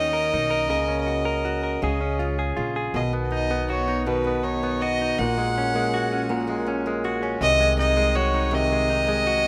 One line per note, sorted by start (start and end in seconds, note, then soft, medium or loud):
0.00 0.29 D#2 medium
0.00 0.69 D#3 medium
0.00 0.32 A#3 medium
0.00 0.88 C#4 soft
0.00 1.07 C#4 medium
0.00 0.33 D#4 soft
0.00 0.69 F#4 medium
0.00 0.12 A#4 medium
0.00 2.20 D#5 medium
0.13 0.49 A#4 medium
0.33 0.71 B1 medium
0.33 0.69 A#3 soft
0.33 0.78 D#4 medium
0.51 0.69 A#4 medium
0.69 1.78 C#2 medium
0.69 1.81 C#3 medium
0.69 1.82 A#3 medium
0.69 1.44 F#4 medium
0.69 1.24 A#4 medium
0.88 1.89 C#4 soft
1.06 1.90 C#4 medium
1.06 1.44 F#4 soft
1.25 1.62 A#4 medium
1.45 1.90 F#4 medium
1.63 1.82 A#4 soft
1.82 2.53 C#2 medium
1.82 2.94 C#3 medium
1.82 2.56 G#3 medium
1.82 2.38 G#4 medium
2.01 3.01 C#4 soft
2.19 3.02 C#4 medium
2.19 2.55 F4 soft
2.39 2.75 G#4 medium
2.57 2.92 A#1 medium
2.57 3.02 G#3 soft
2.57 3.01 F4 medium
2.76 3.02 G#4 medium
2.94 5.13 B1 medium
2.94 4.06 B2 medium
2.94 4.05 D#3 medium
2.94 3.12 D#5 medium
3.13 3.49 B3 soft
3.31 3.86 D#4 medium
3.31 3.87 D#4 soft
3.31 3.67 D#5 medium
3.50 4.23 B3 medium
3.50 4.25 B3 medium
3.69 4.81 F#4 soft
3.69 4.82 F#4 medium
3.69 4.04 C#5 medium
3.88 4.43 D#4 soft
4.06 5.18 B2 medium
4.06 5.25 D#3 medium
4.06 4.45 B4 medium
4.24 4.62 B3 soft
4.24 4.62 B3 medium
4.44 4.99 D#4 medium
4.44 4.99 D#4 soft
4.44 4.83 C#5 medium
4.63 5.18 B3 medium
4.63 5.26 B3 medium
4.81 5.93 F#4 medium
4.81 5.41 F#4 medium
4.81 5.20 D#5 medium
5.00 5.26 D#4 soft
5.18 7.38 A#1 medium
5.18 6.29 A#2 medium
5.18 5.36 A#3 medium
5.18 6.67 F#5 medium
5.38 5.75 G#3 soft
5.56 6.10 C#4 soft
5.56 6.11 C#4 soft
5.74 6.49 G#3 medium
5.74 6.28 A#3 medium
5.93 7.04 F#4 medium
5.93 7.04 G#4 medium
6.11 6.65 C#4 medium
6.11 6.67 C#4 soft
6.29 7.41 A#2 medium
6.29 6.46 A#3 medium
6.47 6.87 G#3 soft
6.47 6.85 A#3 soft
6.66 7.22 C#4 medium
6.66 7.21 C#4 medium
6.86 7.60 G#3 medium
6.86 7.49 A#3 medium
7.04 7.63 F#4 medium
7.04 8.15 G#4 medium
7.23 7.49 C#4 medium
7.23 7.49 C#4 soft
7.41 9.47 C2 medium
7.41 8.52 C3 medium
7.41 8.50 D#3 medium
7.41 7.76 D#5 loud
7.60 7.95 G#3 soft
7.60 7.96 G#3 medium
7.78 8.32 C4 medium
7.78 8.33 D#4 soft
7.78 8.17 D#5 loud
7.96 8.69 G#3 medium
7.96 8.71 G#3 medium
8.15 9.24 F#4 medium
8.15 9.26 F#4 medium
8.15 8.56 C#5 medium
8.33 8.87 C4 medium
8.33 8.89 D#4 soft
8.51 9.47 C3 medium
8.51 9.47 D#3 medium
8.51 9.47 D#5 loud
8.70 9.06 G#3 soft
8.70 9.07 G#3 medium
8.88 9.43 C4 medium
8.88 9.46 D#4 soft
9.07 9.47 G#3 medium
9.25 9.47 F#4 medium
9.44 9.47 C4 soft